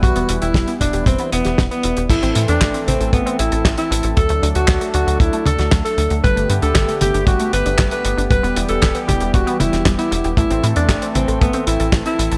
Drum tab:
CC |----------------|x---------------|----------------|----------------|
HH |xxxxxxxxxxxxxxxx|xxxxxxxxxxxxxxxx|xxxxxxxxxxxxxxxx|xxxxxxxxxxxxxxxx|
CP |----------------|----x-------x---|----x-------x---|----x-------x---|
SD |----o------oo---|----o-------o---|----o------oo---|----o-------o---|
T1 |----------------|------o---------|----------o-----|------o---------|
BD |o---o-o-o---o---|o---o---o---o---|o---o---o---o---|o---o---o---o---|

CC |----------------|----------------|
HH |xxxxxxxxxxxxxxxx|xxxxxxxxxxxxxxxx|
CP |----x-------x---|----x-------x---|
SD |----o------oo---|----o-------o---|
T1 |------o---o-----|------o---------|
BD |o---o-o-o---o---|o---o---o---o---|